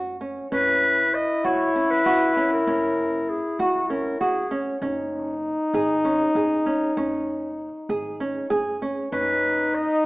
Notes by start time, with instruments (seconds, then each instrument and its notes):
Already playing: upright bass F#1, nylon-string guitar F#4
0.21 nylon-string guitar C#4
0.52 upright bass F#1, nylon-string guitar C#4, french horn E4, clarinet B4
1.14 clarinet D#5
1.44 upright bass C#2, nylon-string guitar F#4, clarinet C#5
1.76 nylon-string guitar C#4
1.91 clarinet B4
2.06 upright bass F#1, nylon-string guitar F#4
2.37 nylon-string guitar C#4
2.52 clarinet A#4
2.67 upright bass F#1, nylon-string guitar C#4
3.30 clarinet G#4
3.59 upright bass C#2, clarinet F#4, nylon-string guitar F#4
3.90 nylon-string guitar C#4, clarinet A#4
4.21 upright bass F#1, nylon-string guitar F#4, clarinet G#4
4.51 nylon-string guitar C#4
4.82 upright bass F#1, nylon-string guitar C#4, french horn D#4
5.74 upright bass G#1, nylon-string guitar G#4
6.05 nylon-string guitar C#4
6.35 upright bass F#1, nylon-string guitar G#4
6.66 nylon-string guitar C#4
6.97 upright bass F#1, nylon-string guitar C#4
7.89 upright bass G#1, nylon-string guitar G#4
8.20 nylon-string guitar C#4
8.50 upright bass F#1, nylon-string guitar G#4
8.82 nylon-string guitar C#4
9.12 upright bass F#1, nylon-string guitar C#4, french horn D#4, clarinet B4
9.75 clarinet D#5